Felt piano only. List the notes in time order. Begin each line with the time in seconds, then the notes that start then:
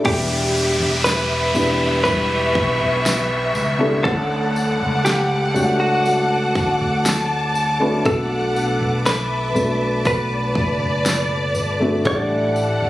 0.04 E3 B3 D4 E4 F#4 B4
0.11 G4
1.54 B3 D4 E4 G4 B4
3.79 B3 D4 E4 G4 A4
4.03 A3 C#4 D4 A4 F#5
5.54 A3 C#4 D4 F#4 A4
7.80 A3 C#4 D4 F#4 B4
8.05 B2 A3 B3 D4 F#4 A4
9.54 A3 B3 D4 F#4 B4
11.80 A3 B3 D4 F#4 A4
12.05 A2 A3 D4 E4 G4 A4